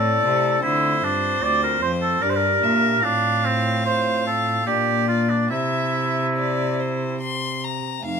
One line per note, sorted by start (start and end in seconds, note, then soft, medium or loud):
0.00 0.20 A2 soft
0.00 0.23 A2 medium
0.00 0.58 A3 soft
0.00 0.59 C4 soft
0.00 0.61 E4 soft
0.00 0.62 A4 medium
0.00 0.63 D5 medium
0.24 0.60 C3 medium
0.24 0.63 C3 medium
0.60 1.00 A3 soft
0.60 2.17 C4 soft
0.60 1.05 E4 medium
0.60 2.18 F4 soft
0.60 2.24 C5 medium
0.64 1.00 D3 medium
0.64 1.02 D3 medium
1.03 1.42 G2 medium
1.03 1.39 G2 medium
1.03 1.45 D4 medium
1.43 1.78 D2 soft
1.43 1.82 D2 medium
1.43 1.62 D5 medium
1.63 1.82 A#4 medium
1.82 2.18 F2 medium
1.82 2.22 F2 medium
1.82 1.91 C5 medium
2.02 2.23 A4 medium
2.19 2.59 G2 medium
2.19 2.62 G2 medium
2.19 2.99 D4 soft
2.19 3.00 G4 medium
2.19 2.31 A#4 medium
2.19 2.65 D5 medium
2.30 2.37 C5 medium
2.36 3.05 A#4 medium
2.63 3.03 A#2 medium
2.63 3.00 A#2 medium
2.63 3.03 E5 medium
3.00 4.63 A2 medium
3.00 4.61 C4 soft
3.00 3.46 D4 medium
3.00 4.62 F4 soft
3.00 4.69 F5 medium
3.04 4.63 A2 medium
3.45 3.85 C4 medium
3.85 4.25 C5 medium
4.27 4.66 A4 medium
4.63 5.53 A#2 medium
4.63 5.46 A#3 soft
4.63 5.47 D4 soft
4.63 5.48 F4 soft
4.63 5.07 G4 medium
4.67 5.47 A#2 soft
4.67 5.51 D5 medium
5.08 5.31 F4 medium
5.29 5.49 D4 medium
5.47 7.80 C3 soft
5.47 7.85 C3 medium
5.47 7.99 C4 soft
5.47 7.17 E4 medium
5.47 6.26 E5 medium
6.38 6.81 D5 medium
6.80 7.20 C5 medium
7.21 7.65 C6 medium
7.64 8.04 A#5 medium
8.00 8.20 A3 soft
8.00 8.20 C4 soft
8.00 8.20 D#4 soft
8.05 8.20 F2 medium
8.05 8.20 F5 medium